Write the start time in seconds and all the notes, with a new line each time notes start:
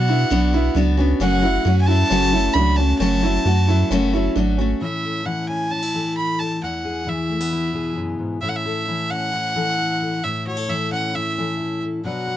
Already playing: B2 F#5
0.08 B3 D4 E4 F#4
0.30 B1 B2 F#3 B3 D4 F#4
0.53 B3 D4 E4 F#4
0.75 C#2 F#3 B3 D4 F#4
0.97 B3 C#4 D4 F#4
1.20 F#1 F#2 C#3 F#3 A3 C#4 F#4 F#5
1.42 F#3 A3 C#4 E4 F#4
1.65 F#2 F#3 A3 C#4 F#4
1.81 G#5
1.86 A3 C#4 E4 F#4 A5
1.91 F#3
2.10 F#1 F#2 C#3 F#3 A3 C#4 F#4
2.33 F#3 A3 C#4 E4 F#4
2.53 C#2 F#3 A3 C#4 D4 B5
2.58 F#4
2.77 A3 C#4 F#4 A5
2.81 F#3
2.99 F#1 F#2 C#3 F#3 A3 C#4 F#4 A5
3.22 F#3 A3 C#4 E4 F#4
3.45 F#2 F#3 A3 C#4 F#4
3.67 F#3 A3 C#4 E4 F#4
3.90 F#1 F#2 C#3 F#3 A3 C#4 F#4
4.13 F#3 A3 C#4 E4 F#4
4.36 G#1 F#3 A3 C#4 D4 F#4
4.58 F#3 A3 C#4 F#4
4.81 A2 E3 C#4 E4 A4 E5
5.05 A4
5.26 E3 E4 F#5
5.49 C#4 G#5
5.71 C#4 A5
5.83 E4
5.94 E3 A4
6.17 E4 B5
6.39 A4 A5
6.63 E2 E4 F#5
6.85 G#4
7.07 E3 E4 E5
7.29 A3
7.41 B3
7.53 E4
7.73 B2 G#4
7.96 F#2
8.19 G#2
8.41 A2 E3 C#4 E4 A4 E5
8.49 F#5
8.56 E5
8.66 A4
8.88 E3 E4
9.10 C#4 F#5
9.33 E4
9.56 E3 A4
9.79 E4
10.02 A4
10.24 A2 E4 E5
10.47 F#4 C#5
10.57 A4
10.68 E3 E4 E5
10.92 C#4 F#5
11.15 E4 E5
11.38 E3 A4
11.60 E4
11.83 A4
12.04 B2 F#3 D4 F#4 B4 F#5
12.27 B4